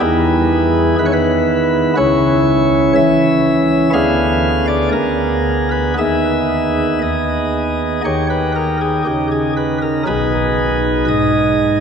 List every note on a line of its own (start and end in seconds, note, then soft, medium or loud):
0.00 0.96 E2 medium
0.00 0.96 E3 medium
0.00 1.93 B3 medium
0.00 1.93 E4 medium
0.00 0.96 G#4 loud
0.99 1.95 D#3 medium
0.99 1.05 B4 loud
1.06 1.12 C#5 medium
1.13 1.95 B4 loud
1.97 2.93 C#2 medium
1.97 2.93 C#3 medium
1.97 3.90 C#4 soft
1.97 3.90 E4 medium
1.97 2.93 C#5 loud
2.95 3.90 E3 medium
2.95 3.91 E5 loud
3.93 4.90 D2 medium
3.93 4.90 D3 medium
3.93 5.94 B3 medium
3.93 5.94 G#4 medium
3.93 4.65 F5 loud
4.67 4.89 D5 medium
4.92 5.94 D2 medium
4.92 5.69 A#4 medium
5.71 5.94 B4 medium
5.98 6.98 D#2 medium
5.98 6.98 D#3 medium
5.98 8.01 B3 soft
5.98 8.01 G#4 soft
5.98 6.99 E5 medium
7.02 8.02 D#2 medium
7.02 8.02 D#5 medium
8.05 9.03 D#2 medium
8.05 9.04 D#3 medium
8.05 10.03 D#4 soft
8.05 9.04 G4 soft
8.05 8.27 C#5 medium
8.30 8.52 B4 medium
8.55 8.77 A#4 medium
8.81 9.03 G#4 medium
9.06 10.04 C#3 soft
9.06 9.28 G4 medium
9.32 9.53 G#4 medium
9.57 9.78 B4 medium
9.82 10.03 A#4 medium
10.07 11.05 B1 medium
10.07 11.05 B2 medium
10.07 11.80 D#4 soft
10.07 11.80 G#4 soft
10.07 11.05 B4 medium
11.08 11.80 G#2 medium
11.08 11.80 D#5 medium